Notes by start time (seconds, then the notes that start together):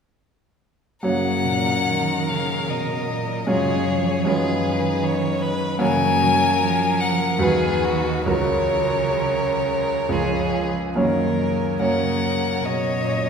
1.03 F#2 C#3 A#3 F#4 A#4 C#5 F#5
1.46 A#2
1.88 D#3
2.29 C#3 F5
2.70 B2 D#5
3.11 A#2
3.47 F#2 C#3 G#3 F4 G#4 C#5
3.90 F3
4.25 F#2 D#3 G#3 F4 G#4 B4 C#5
5.03 C#5
5.41 B4
5.79 F#2 C#3 A#3 F#4 A#4 C#5 G#5
6.22 F#3
6.63 F3
7.00 F#5
7.39 D#2 F#3 F#4 G#4 B4
7.44 D#3
7.85 F#4
8.26 C#2 F#3 F#4 A#4 C#5
8.30 C#3
10.09 C#2 G#3 F4 G#4 C#5
10.13 F3
10.96 F#2 D#3 A#3 C#4 A#4 C#5
11.40 C#3
11.80 F#2 A#3 C#4 A#4 C#5 F#5
12.64 B2 C#5 D#5
13.05 A#2